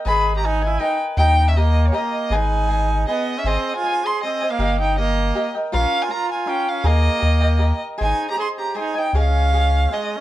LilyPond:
<<
  \new Staff \with { instrumentName = "Violin" } { \time 3/4 \key gis \minor \tempo 4 = 159 b''8. ais''16 gis''8 gis''8 g''8 r8 | g''8. e''16 dis''8. cis''16 dis''4 | gis''2 dis''8. e''16 | \key aes \major ees''8. aes''8. c'''8 ees''8. f''16~ |
f''8 g''8 ees''4. r8 | f''8. aes''16 bes''8 aes''8 g''8 f''8 | ees''2~ ees''8 r8 | aes''8. bes''16 c'''8 bes''8 aes''8 g''8 |
f''2 ees''8. r16 | }
  \new Staff \with { instrumentName = "Cavaquinho" } { \time 3/4 \key gis \minor <ais' b' dis'' gis''>4 <ais' b' dis'' gis''>8 <b' dis'' gis''>8 <ais' b' dis'' gis''>4 | <g' dis'' g'' ais''>4 <g' dis'' g'' ais''>4 <g' dis'' g'' ais''>4 | <gis' b' dis'' gis''>4 <gis' b' dis'' gis''>4 <gis' b' dis'' gis''>4 | \key aes \major <aes' c'' ees'' aes''>4 <aes' c'' ees'' aes''>4 <aes' c'' ees'' aes''>8 <c'' ees'' aes''>8 |
<g' bes' ees'' g''>4 <g' bes' ees'' g''>4 <g' bes' ees'' g''>8 <bes' ees'' g''>8 | <f' bes' des'' f''>4 <f' bes' des'' f''>4 <f' bes' des'' f''>4 | <aes' bes' ees'' aes''>4 <g' bes' ees'' g''>8 <bes' ees'' g''>8 <g' bes' ees'' g''>4 | <aes' c'' ees'' aes''>4 <aes' c'' ees'' aes''>4 <aes' c'' ees'' aes''>8 <c'' ees'' aes''>8 |
<aes' des'' ees'' aes''>4 <aes' des'' ees'' aes''>4 <aes' des'' ees'' aes''>4 | }
  \new Staff \with { instrumentName = "Trumpet" } { \time 3/4 \key gis \minor gis'8. g'16 dis'8 e'8 dis'8 r8 | dis'8. cis'16 ais8. ais16 ais4 | dis'2 b8. cis'16 | \key aes \major c'8. f'8. aes'8 c'8. bes16~ |
bes8 ees'8 bes4. r8 | des'8. f'16 f'8 f'8 des'8 des'8 | bes2~ bes8 r8 | ees'8. g'16 aes'8 g'8 ees'8 ees'8 |
des'2 aes8. des'16 | }
  \new Staff \with { instrumentName = "Analog synth bass" } { \clef bass \time 3/4 \key gis \minor gis,,2. | dis,2. | gis,,2. | \key aes \major aes,,8 r2 r8 |
g,,2. | bes,,8 r2 r8 | ees,4 ees,2 | aes,,8 r2 r8 |
des,2. | }
>>